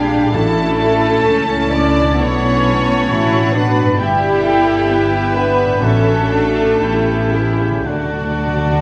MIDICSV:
0, 0, Header, 1, 12, 480
1, 0, Start_track
1, 0, Key_signature, 2, "major"
1, 0, Tempo, 913242
1, 181, Time_signature, 4, 2, 24, 8
1, 3064, Tempo, 1015228
1, 4024, Tempo, 1071429
1, 4450, End_track
2, 0, Start_track
2, 0, Title_t, "Flute section"
2, 0, Program_c, 0, 73
2, 0, Note_on_c, 0, 79, 100
2, 179, Note_on_c, 0, 81, 123
2, 183, Note_off_c, 0, 79, 0
2, 892, Note_off_c, 0, 81, 0
2, 909, Note_on_c, 0, 86, 105
2, 1149, Note_off_c, 0, 86, 0
2, 1151, Note_on_c, 0, 85, 106
2, 1707, Note_off_c, 0, 85, 0
2, 1864, Note_on_c, 0, 83, 108
2, 2101, Note_off_c, 0, 83, 0
2, 2103, Note_on_c, 0, 79, 122
2, 2805, Note_off_c, 0, 79, 0
2, 2817, Note_on_c, 0, 83, 106
2, 3064, Note_off_c, 0, 83, 0
2, 3068, Note_on_c, 0, 81, 119
2, 3779, Note_off_c, 0, 81, 0
2, 3781, Note_on_c, 0, 76, 93
2, 3900, Note_on_c, 0, 73, 85
2, 3902, Note_off_c, 0, 76, 0
2, 4022, Note_on_c, 0, 74, 91
2, 4023, Note_off_c, 0, 73, 0
2, 4450, Note_off_c, 0, 74, 0
2, 4450, End_track
3, 0, Start_track
3, 0, Title_t, "Oboe"
3, 0, Program_c, 1, 68
3, 0, Note_on_c, 1, 80, 90
3, 86, Note_off_c, 1, 80, 0
3, 175, Note_on_c, 1, 81, 104
3, 1126, Note_off_c, 1, 81, 0
3, 1147, Note_on_c, 1, 81, 98
3, 2081, Note_off_c, 1, 81, 0
3, 2103, Note_on_c, 1, 79, 98
3, 3069, Note_on_c, 1, 78, 88
3, 3077, Note_off_c, 1, 79, 0
3, 3536, Note_on_c, 1, 79, 85
3, 3543, Note_off_c, 1, 78, 0
3, 4027, Note_on_c, 1, 78, 85
3, 4034, Note_off_c, 1, 79, 0
3, 4450, Note_off_c, 1, 78, 0
3, 4450, End_track
4, 0, Start_track
4, 0, Title_t, "Violin section"
4, 0, Program_c, 2, 48
4, 0, Note_on_c, 2, 77, 87
4, 167, Note_off_c, 2, 77, 0
4, 175, Note_on_c, 2, 81, 88
4, 403, Note_off_c, 2, 81, 0
4, 409, Note_on_c, 2, 81, 91
4, 1129, Note_off_c, 2, 81, 0
4, 1140, Note_on_c, 2, 78, 93
4, 1615, Note_off_c, 2, 78, 0
4, 1621, Note_on_c, 2, 78, 98
4, 2089, Note_off_c, 2, 78, 0
4, 2099, Note_on_c, 2, 76, 90
4, 4024, Note_off_c, 2, 76, 0
4, 4025, Note_on_c, 2, 74, 80
4, 4450, Note_off_c, 2, 74, 0
4, 4450, End_track
5, 0, Start_track
5, 0, Title_t, "Violin section"
5, 0, Program_c, 3, 48
5, 0, Note_on_c, 3, 67, 119
5, 176, Note_on_c, 3, 69, 127
5, 179, Note_off_c, 3, 67, 0
5, 891, Note_off_c, 3, 69, 0
5, 897, Note_on_c, 3, 74, 127
5, 1143, Note_off_c, 3, 74, 0
5, 1145, Note_on_c, 3, 73, 127
5, 1855, Note_on_c, 3, 71, 127
5, 1861, Note_off_c, 3, 73, 0
5, 2092, Note_on_c, 3, 67, 127
5, 2097, Note_off_c, 3, 71, 0
5, 2799, Note_off_c, 3, 67, 0
5, 2812, Note_on_c, 3, 71, 118
5, 3058, Note_on_c, 3, 69, 127
5, 3062, Note_off_c, 3, 71, 0
5, 3760, Note_off_c, 3, 69, 0
5, 3775, Note_on_c, 3, 64, 108
5, 3896, Note_on_c, 3, 61, 95
5, 3899, Note_off_c, 3, 64, 0
5, 4023, Note_off_c, 3, 61, 0
5, 4025, Note_on_c, 3, 62, 121
5, 4450, Note_off_c, 3, 62, 0
5, 4450, End_track
6, 0, Start_track
6, 0, Title_t, "Viola section"
6, 0, Program_c, 4, 48
6, 0, Note_on_c, 4, 62, 94
6, 0, Note_on_c, 4, 68, 92
6, 181, Note_off_c, 4, 68, 0
6, 181, Note_on_c, 4, 66, 81
6, 659, Note_off_c, 4, 62, 0
6, 663, Note_off_c, 4, 66, 0
6, 663, Note_on_c, 4, 61, 92
6, 663, Note_on_c, 4, 64, 99
6, 903, Note_off_c, 4, 61, 0
6, 905, Note_on_c, 4, 57, 98
6, 1141, Note_off_c, 4, 57, 0
6, 1147, Note_on_c, 4, 57, 99
6, 1626, Note_off_c, 4, 64, 0
6, 1628, Note_on_c, 4, 66, 98
6, 1854, Note_off_c, 4, 66, 0
6, 1861, Note_on_c, 4, 66, 94
6, 2081, Note_off_c, 4, 57, 0
6, 2095, Note_off_c, 4, 66, 0
6, 2098, Note_on_c, 4, 59, 86
6, 2098, Note_on_c, 4, 67, 95
6, 2340, Note_off_c, 4, 67, 0
6, 2343, Note_on_c, 4, 69, 98
6, 2569, Note_off_c, 4, 59, 0
6, 2580, Note_on_c, 4, 71, 96
6, 2581, Note_off_c, 4, 69, 0
6, 2582, Note_on_c, 4, 64, 97
6, 2818, Note_on_c, 4, 62, 88
6, 2819, Note_off_c, 4, 64, 0
6, 3060, Note_off_c, 4, 62, 0
6, 3060, Note_on_c, 4, 61, 88
6, 3064, Note_on_c, 4, 66, 89
6, 3065, Note_off_c, 4, 71, 0
6, 3535, Note_off_c, 4, 61, 0
6, 3535, Note_on_c, 4, 67, 88
6, 3536, Note_on_c, 4, 59, 83
6, 3537, Note_off_c, 4, 66, 0
6, 4024, Note_off_c, 4, 59, 0
6, 4024, Note_off_c, 4, 67, 0
6, 4029, Note_on_c, 4, 57, 87
6, 4030, Note_on_c, 4, 66, 83
6, 4450, Note_off_c, 4, 57, 0
6, 4450, Note_off_c, 4, 66, 0
6, 4450, End_track
7, 0, Start_track
7, 0, Title_t, "Cello section"
7, 0, Program_c, 5, 48
7, 0, Note_on_c, 5, 62, 92
7, 173, Note_on_c, 5, 64, 100
7, 178, Note_off_c, 5, 62, 0
7, 649, Note_off_c, 5, 64, 0
7, 659, Note_on_c, 5, 61, 95
7, 1143, Note_on_c, 5, 59, 107
7, 1146, Note_off_c, 5, 61, 0
7, 1619, Note_on_c, 5, 64, 114
7, 1623, Note_off_c, 5, 59, 0
7, 1860, Note_off_c, 5, 64, 0
7, 1861, Note_on_c, 5, 62, 94
7, 2100, Note_off_c, 5, 62, 0
7, 2100, Note_on_c, 5, 64, 101
7, 2579, Note_on_c, 5, 59, 88
7, 2580, Note_off_c, 5, 64, 0
7, 3055, Note_off_c, 5, 59, 0
7, 3063, Note_on_c, 5, 61, 99
7, 3298, Note_off_c, 5, 61, 0
7, 3301, Note_on_c, 5, 62, 99
7, 3539, Note_off_c, 5, 62, 0
7, 3540, Note_on_c, 5, 64, 90
7, 4026, Note_off_c, 5, 64, 0
7, 4027, Note_on_c, 5, 66, 87
7, 4450, Note_off_c, 5, 66, 0
7, 4450, End_track
8, 0, Start_track
8, 0, Title_t, "Clarinet"
8, 0, Program_c, 6, 71
8, 0, Note_on_c, 6, 62, 96
8, 175, Note_on_c, 6, 61, 98
8, 183, Note_off_c, 6, 62, 0
8, 1142, Note_off_c, 6, 61, 0
8, 1145, Note_on_c, 6, 62, 103
8, 2080, Note_off_c, 6, 62, 0
8, 2089, Note_on_c, 6, 64, 104
8, 2962, Note_off_c, 6, 64, 0
8, 3051, Note_on_c, 6, 62, 96
8, 3531, Note_on_c, 6, 61, 90
8, 3538, Note_off_c, 6, 62, 0
8, 4016, Note_on_c, 6, 62, 95
8, 4024, Note_off_c, 6, 61, 0
8, 4450, Note_off_c, 6, 62, 0
8, 4450, End_track
9, 0, Start_track
9, 0, Title_t, "Harp"
9, 0, Program_c, 7, 46
9, 0, Note_on_c, 7, 46, 80
9, 0, Note_on_c, 7, 58, 67
9, 0, Note_on_c, 7, 62, 68
9, 0, Note_on_c, 7, 68, 66
9, 85, Note_on_c, 7, 45, 90
9, 108, Note_on_c, 7, 61, 72
9, 133, Note_on_c, 7, 64, 69
9, 152, Note_off_c, 7, 46, 0
9, 155, Note_on_c, 7, 69, 73
9, 164, Note_off_c, 7, 58, 0
9, 175, Note_off_c, 7, 62, 0
9, 188, Note_off_c, 7, 68, 0
9, 1049, Note_on_c, 7, 47, 80
9, 1074, Note_on_c, 7, 59, 73
9, 1113, Note_off_c, 7, 69, 0
9, 1119, Note_off_c, 7, 45, 0
9, 1120, Note_on_c, 7, 69, 73
9, 1131, Note_off_c, 7, 61, 0
9, 1143, Note_off_c, 7, 64, 0
9, 2002, Note_on_c, 7, 43, 94
9, 2021, Note_off_c, 7, 59, 0
9, 2027, Note_on_c, 7, 59, 71
9, 2049, Note_on_c, 7, 64, 77
9, 2070, Note_off_c, 7, 47, 0
9, 2073, Note_on_c, 7, 67, 77
9, 2106, Note_off_c, 7, 69, 0
9, 2967, Note_on_c, 7, 45, 82
9, 2991, Note_on_c, 7, 57, 64
9, 3036, Note_off_c, 7, 43, 0
9, 3040, Note_on_c, 7, 66, 67
9, 3049, Note_off_c, 7, 59, 0
9, 3060, Note_off_c, 7, 64, 0
9, 3071, Note_off_c, 7, 67, 0
9, 3444, Note_off_c, 7, 45, 0
9, 3450, Note_on_c, 7, 45, 79
9, 3470, Note_on_c, 7, 59, 68
9, 3491, Note_on_c, 7, 61, 66
9, 3513, Note_on_c, 7, 67, 67
9, 3545, Note_off_c, 7, 66, 0
9, 3940, Note_on_c, 7, 50, 80
9, 3955, Note_off_c, 7, 57, 0
9, 3961, Note_on_c, 7, 57, 62
9, 3983, Note_on_c, 7, 62, 67
9, 4001, Note_off_c, 7, 45, 0
9, 4005, Note_on_c, 7, 66, 68
9, 4012, Note_off_c, 7, 59, 0
9, 4022, Note_off_c, 7, 61, 0
9, 4032, Note_off_c, 7, 67, 0
9, 4450, Note_off_c, 7, 50, 0
9, 4450, Note_off_c, 7, 57, 0
9, 4450, Note_off_c, 7, 62, 0
9, 4450, Note_off_c, 7, 66, 0
9, 4450, End_track
10, 0, Start_track
10, 0, Title_t, "French horn section"
10, 0, Program_c, 8, 60
10, 0, Note_on_c, 8, 55, 112
10, 179, Note_off_c, 8, 55, 0
10, 180, Note_on_c, 8, 57, 120
10, 907, Note_off_c, 8, 57, 0
10, 913, Note_on_c, 8, 62, 114
10, 1143, Note_on_c, 8, 61, 107
10, 1151, Note_off_c, 8, 62, 0
10, 1846, Note_off_c, 8, 61, 0
10, 1859, Note_on_c, 8, 59, 111
10, 2028, Note_off_c, 8, 59, 0
10, 2100, Note_on_c, 8, 55, 125
10, 2803, Note_off_c, 8, 55, 0
10, 2818, Note_on_c, 8, 59, 110
10, 3059, Note_on_c, 8, 57, 118
10, 3065, Note_off_c, 8, 59, 0
10, 3774, Note_on_c, 8, 52, 101
10, 3775, Note_off_c, 8, 57, 0
10, 3895, Note_on_c, 8, 49, 88
10, 3898, Note_off_c, 8, 52, 0
10, 4015, Note_on_c, 8, 50, 100
10, 4023, Note_off_c, 8, 49, 0
10, 4450, Note_off_c, 8, 50, 0
10, 4450, End_track
11, 0, Start_track
11, 0, Title_t, "Timpani"
11, 0, Program_c, 10, 47
11, 177, Note_on_c, 10, 45, 106
11, 884, Note_off_c, 10, 45, 0
11, 3059, Note_on_c, 10, 45, 114
11, 3516, Note_off_c, 10, 45, 0
11, 4024, Note_on_c, 10, 50, 42
11, 4061, Note_off_c, 10, 50, 0
11, 4069, Note_on_c, 10, 50, 43
11, 4099, Note_off_c, 10, 50, 0
11, 4105, Note_on_c, 10, 50, 44
11, 4136, Note_off_c, 10, 50, 0
11, 4141, Note_on_c, 10, 50, 46
11, 4176, Note_off_c, 10, 50, 0
11, 4181, Note_on_c, 10, 50, 45
11, 4215, Note_off_c, 10, 50, 0
11, 4220, Note_on_c, 10, 50, 46
11, 4253, Note_off_c, 10, 50, 0
11, 4259, Note_on_c, 10, 50, 50
11, 4294, Note_off_c, 10, 50, 0
11, 4299, Note_on_c, 10, 50, 53
11, 4333, Note_off_c, 10, 50, 0
11, 4338, Note_on_c, 10, 50, 48
11, 4372, Note_off_c, 10, 50, 0
11, 4377, Note_on_c, 10, 50, 52
11, 4409, Note_off_c, 10, 50, 0
11, 4414, Note_on_c, 10, 50, 53
11, 4449, Note_off_c, 10, 50, 0
11, 4450, End_track
12, 0, Start_track
12, 0, Title_t, "Double bass section"
12, 0, Program_c, 11, 48
12, 0, Note_on_c, 11, 34, 88
12, 158, Note_off_c, 11, 34, 0
12, 177, Note_on_c, 11, 33, 92
12, 659, Note_on_c, 11, 37, 86
12, 661, Note_off_c, 11, 33, 0
12, 1137, Note_off_c, 11, 37, 0
12, 1147, Note_on_c, 11, 35, 97
12, 1619, Note_on_c, 11, 33, 89
12, 1625, Note_off_c, 11, 35, 0
12, 2098, Note_off_c, 11, 33, 0
12, 2099, Note_on_c, 11, 31, 99
12, 3045, Note_off_c, 11, 31, 0
12, 3060, Note_on_c, 11, 33, 93
12, 3526, Note_off_c, 11, 33, 0
12, 3539, Note_on_c, 11, 33, 97
12, 4016, Note_off_c, 11, 33, 0
12, 4022, Note_on_c, 11, 38, 83
12, 4450, Note_off_c, 11, 38, 0
12, 4450, End_track
0, 0, End_of_file